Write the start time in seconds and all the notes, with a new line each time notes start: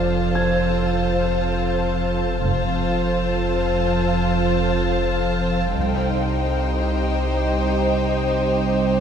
Already playing: F1 F2 F4 A4 C5 F5 A5
0.35 G#6
2.43 F1 F2 F4 A4 C5 F5 A5
5.76 C2 D#4 G4 C5 D#5 G5